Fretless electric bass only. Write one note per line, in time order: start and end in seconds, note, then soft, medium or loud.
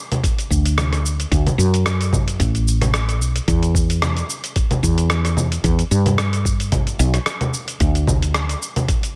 0.50 1.24 D2 medium
1.32 1.49 D2 loud
1.58 2.39 F#2 medium
2.40 3.21 A1 medium
3.21 3.38 B1 medium
3.48 4.21 E2 medium
4.83 5.57 E2 medium
5.64 5.82 E2 loud
5.91 6.92 G2 loud
6.99 7.17 B1 loud
7.80 8.54 D2 medium